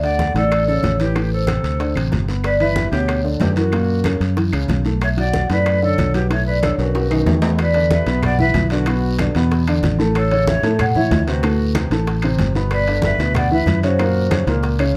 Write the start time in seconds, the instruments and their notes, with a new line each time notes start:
Already playing: fingered electric bass D2
0.03 grand piano D3 D4, flute D5, vibraphone F#5, high conga, high timbale
0.19 high bongo, high conga, short guiro
0.34 fingered electric bass A1, grand piano A2 A3, flute A4, vibraphone D5, high bongo, high conga, high timbale, short guiro
0.51 high bongo, high conga, high timbale, long guiro, claves
0.67 grand piano C#3 C#4, flute A4, high bongo, high conga
0.83 fingered electric bass A1, high bongo, low bongo, high conga, high timbale, short guiro
0.99 grand piano E3 E4, flute G4, vibraphone B4, high bongo, high conga, high timbale, short guiro
1.15 grand piano A2 A3, high bongo, high conga, high timbale, long guiro, claves
1.31 flute A4, vibraphone C5, high conga
1.47 grand piano C3 C4, high bongo, high conga, high timbale, short guiro, claves
1.64 fingered electric bass D2, high bongo, high timbale, short guiro
1.79 grand piano D3 D4, high bongo, high conga, high timbale, long guiro
1.95 fingered electric bass A1, grand piano C3 C4, high bongo, high conga, high timbale, claves
2.12 fingered electric bass G1, high bongo, low bongo, high conga, high timbale, short guiro
2.28 grand piano B3 B4, high bongo, high conga, short guiro
2.44 flute B4, vibraphone D5, high bongo, high conga, high timbale, long guiro, claves
2.60 grand piano E3 E4, flute B4, vibraphone E5, high conga, high timbale
2.76 high bongo, high conga, short guiro
2.91 fingered electric bass D2, grand piano B2 B3, flute G4, vibraphone C#5, high bongo, high conga, high timbale, short guiro
3.08 high bongo, high conga, high timbale, long guiro, claves
3.24 grand piano D3 D4, high bongo, high conga
3.39 fingered electric bass F#2, flute G4, vibraphone B4, high bongo, low bongo, high conga, high timbale, low timbale, short guiro
3.55 grand piano E3 E4, flute F#4, vibraphone A#4, high bongo, high conga, high timbale, short guiro
3.72 grand piano A#2 A#3, high bongo, high conga, high timbale, long guiro, claves
3.88 high conga
4.04 grand piano C#3 C#4, high bongo, high conga, high timbale, short guiro, claves
4.20 fingered electric bass F#2, high bongo, high timbale, short guiro
4.36 grand piano E3 E4, high bongo, high conga, high timbale, long guiro
4.52 fingered electric bass C#2, grand piano C#3 C#4, high bongo, high conga, high timbale, claves
4.68 fingered electric bass B1, high bongo, low bongo, high conga, high timbale, short guiro
4.85 grand piano A3 A4, high bongo, high conga, short guiro
5.01 flute C#5, vibraphone E5, high bongo, high conga, high timbale, long guiro, claves
5.17 grand piano F#3 F#4, flute D5, vibraphone F#5, high conga, high timbale
5.33 high bongo, high conga, short guiro
5.50 fingered electric bass F#2, grand piano A2 A3, flute B4, vibraphone D5, high bongo, high conga, high timbale, short guiro
5.66 high bongo, high conga, high timbale, long guiro, claves
5.82 grand piano D3 D4, flute A4, vibraphone C#5, high bongo, high conga
5.98 fingered electric bass B1, high bongo, low bongo, high conga, high timbale, short guiro
6.14 grand piano F#3 F#4, flute G4, vibraphone B4, high bongo, high conga, high timbale, short guiro
6.30 grand piano A2 A3, flute C#5, vibraphone E5, high bongo, high conga, high timbale, long guiro, claves
6.46 flute B4, vibraphone D5, high conga
6.62 grand piano D3 D4, flute A4, vibraphone C#5, high bongo, high conga, high timbale, short guiro, claves
6.78 fingered electric bass B1, flute F#4, vibraphone B4, high bongo, high timbale, short guiro
6.95 grand piano F#3 F#4, high bongo, high conga, high timbale, long guiro
7.10 grand piano D#3 D#4, high bongo, high conga, high timbale, claves
7.26 fingered electric bass E2, high bongo, low bongo, high conga, low timbale, short guiro
7.42 grand piano B3 B4, high bongo, high conga, low timbale, short guiro
7.58 flute B4, vibraphone D5, high bongo, high conga, high timbale, long guiro, claves
7.74 grand piano D3 D4 D5, high conga, high timbale
7.91 flute B4, vibraphone E5, high bongo, high conga, short guiro
8.06 fingered electric bass B1, grand piano B2 B3 B4, high bongo, high conga, high timbale, short guiro
8.22 flute D5, vibraphone F#5, high bongo, high conga, low conga, high timbale, long guiro, claves
8.39 grand piano E3 E4 E5, flute B4, vibraphone E5, high bongo, high conga, low conga
8.54 fingered electric bass B1, high bongo, low bongo, high conga, high timbale, short guiro
8.70 grand piano D3 D4 D5, flute F#4, vibraphone B4, high bongo, high conga, high timbale, short guiro
8.86 grand piano B2 B3 B4, high bongo, high timbale, long guiro, claves
9.03 high conga
9.19 grand piano D3 D4 D5, high bongo, high conga, high timbale, short guiro, claves
9.35 fingered electric bass E2, grand piano B2 B3 B4, high bongo, high timbale, short guiro
9.51 high bongo, high conga, high timbale, long guiro
9.67 grand piano D3 D4 D5, high bongo, high conga, high timbale, claves
9.83 fingered electric bass A1, high bongo, low bongo, high conga, high timbale, short guiro
9.99 grand piano A2 A3 A4, high bongo, high conga, short guiro
10.15 flute A4, vibraphone C#5, high bongo, high conga, high timbale, long guiro, claves
10.31 grand piano C#3 C#4 C#5, high conga, high timbale
10.47 flute C#5, vibraphone E5, high bongo, high conga, short guiro
10.62 fingered electric bass A2, grand piano A2 A3 A4, high bongo, high conga, high timbale, short guiro
10.79 flute C#5, vibraphone F#5, high bongo, high conga, low conga, high timbale, long guiro, claves
10.95 grand piano E3 E4 E5, flute C#5, vibraphone E5, high bongo, high conga, low conga
11.11 fingered electric bass D2, high bongo, low bongo, high conga, high timbale, low timbale, short guiro
11.27 grand piano C3 C4 C5, flute F#4, vibraphone B4, high bongo, high conga, high timbale, short guiro
11.43 grand piano A2 A3 A4, high bongo, high conga, high timbale, long guiro, claves
11.58 high conga
11.75 grand piano C3 C4 C5, high bongo, high conga, high timbale, short guiro, claves
11.90 fingered electric bass A1, grand piano A2 A3 A4, high bongo, high timbale, short guiro
12.07 high bongo, high conga, high timbale, long guiro
12.22 grand piano C3 C4 C5, high bongo, high conga, high timbale, claves
12.38 fingered electric bass G1, high bongo, low bongo, high conga, high timbale, short guiro
12.54 grand piano B2 B3 B4, high bongo, high conga, short guiro
12.70 flute B4, vibraphone D5, high bongo, high conga, high timbale, long guiro, claves
12.86 grand piano D3 D4 D5, high conga, high timbale
13.02 flute B4, high bongo, high conga, short guiro
13.06 vibraphone E5
13.18 fingered electric bass D2, grand piano B2 B3 B4, high bongo, high conga, high timbale, short guiro
13.34 flute D5, vibraphone F#5, high bongo, high conga, low conga, high timbale, long guiro, claves
13.50 grand piano E3 E4 E5, flute B4, vibraphone E5, high bongo, high conga
13.66 fingered electric bass F#2, high bongo, low bongo, high conga, high timbale, short guiro
13.82 grand piano C#3 C#4 C#5, flute F#4, high bongo, high conga, high timbale, short guiro
13.86 vibraphone C5
13.98 grand piano A#2 A#3 A#4, high bongo, high conga, high timbale, long guiro, claves
14.15 high conga
14.31 grand piano C#3 C#4 C#5, high bongo, high conga, high timbale, short guiro, claves
14.47 fingered electric bass C#2, grand piano A#2 A#3 A#4, high bongo, high timbale, short guiro
14.63 high bongo, high conga, high timbale, long guiro
14.79 grand piano C#3 C#4 C#5, high bongo, high conga, high timbale, claves